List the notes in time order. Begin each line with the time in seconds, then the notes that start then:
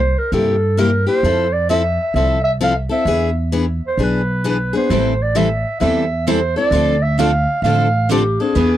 Already playing: C2 C5
0.18 A#4
0.32 G2 C3 G3 A#3 E4 G4 A4
0.77 C3 G3 A#3 E4 G4 A#4
1.07 A#3 E4 G4 C5
1.23 F2 F3 C4 E4 A4
1.52 D5
1.69 F3 C4 E4 A4 E5
2.14 C2 F3 C4 E4 A4 E5
2.44 E5
2.61 F3 C4 E4 A4 F5
2.89 C4 E4 A4 E5
3.05 E2 E3 B3 D4 G#4
3.52 E3 B3 D4 G#4
3.87 C5
3.98 B1 E3 B3 D4 G#4
4.03 B4
4.44 E3 B3 D4 G#4
4.49 B4
4.73 B3 D4 G#4 C5
4.90 A1 E3 G3 C4 E4 A4
5.22 D5
5.35 E3 G3 C4 E4 A4 E5
5.80 E2 E3 G3 C4 E4 A4 E5
6.27 E3 G3 C4 E4 A4 C5
6.56 C4 E4 A4 D5
6.71 D2 D3 F3 A3 C4 D4 A4
6.75 F4
7.02 E5
7.18 D3 F3 A3 C4 D4 F4 A4 F5
7.62 A1 D3 F3 A3 C4 D4 F4 A4 F5
8.09 D3 F3 A3 C4 D4 F4 G4 A4
8.40 C4 D4 G#4 A4
8.55 E2 E3 B3 D4 G#4 B4